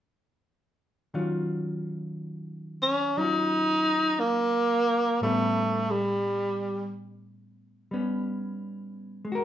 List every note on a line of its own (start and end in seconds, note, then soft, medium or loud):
1.14 5.21 D#3 soft
1.14 3.16 F#3 soft
1.14 3.18 C#4 soft
1.14 3.20 F4 soft
2.83 3.20 C#4 medium
3.17 5.20 F#3 soft
3.17 5.22 C#4 soft
3.17 4.21 D#4 medium
3.17 5.22 F4 soft
4.20 5.21 A#3 medium
5.21 9.26 A2 soft
5.21 7.90 G3 soft
5.21 5.92 A3 medium
5.21 7.92 B3 soft
5.26 7.92 C#4 soft
5.91 6.90 G3 medium
7.91 9.24 G3 soft
7.91 9.27 B3 soft
7.91 9.27 C#4 soft
9.25 9.44 G#3 soft
9.32 9.44 F#4 medium
9.32 9.44 A#4 soft